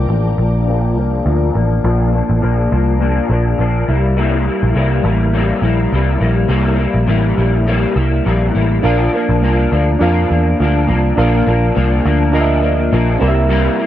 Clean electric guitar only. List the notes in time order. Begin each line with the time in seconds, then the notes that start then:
0.09 A#2 F3 A#3 D4
0.37 F3 A#3 D4
0.67 A#2 F3 A#3 D4
0.96 F3 A#3 D4
1.25 A#2 F3 A#3 D4
1.54 F3 A#3 D4
1.84 A#2 F3 A#3 D4
2.12 F3 A#3 D4
2.41 A#2 F3 A#3 D4
2.71 F3 A#3 D4
3.00 A#2 F3 A#3 D4
3.29 F3 A#3 D4
3.58 A#2 F3 A#3 D4
3.88 G3 A#3 E4
4.17 C3 G3 A#3 E4
4.46 G3 A#3 E4
4.74 C3 G3 A#3 E4
5.05 G3 A#3 E4
5.33 C3 G3 A#3 E4
5.62 G3 A#3 E4
5.92 C3 G3 A#3 E4
6.20 G3 A#3 E4
6.48 C3 G3 A#3 E4
6.77 G3 A#3 E4
7.07 C3 G3 A#3 E4
7.38 G3 A#3 E4
7.67 C3 G3 A#3 E4
7.96 G3 A#3 E4
8.25 C3 G3 A#3 E4
8.55 G3 A#3 E4
8.83 A#2 F3 A#3 D4
9.13 F3 A#3 D4
9.41 A#2 F3 A#3 D4
9.72 F3 A#3 D4
10.00 A#2 F3 A#3 D4
10.30 F3 A#3 D4
10.59 A#2 F3 A#3 D4
10.87 F3 A#3 D4
11.17 A#2 F3 A#3 D4
11.46 F3 A#3 D4
11.74 A#2 F3 A#3 D4
12.05 F3 A#3 D4
12.33 A#2 F3 A#3 D4
12.61 F3 A#3 D4
12.91 A#2 F3 A#3 D4
13.20 G3 A#3 E4
13.49 C3 G3 A#3 E4
13.78 G3 A#3 E4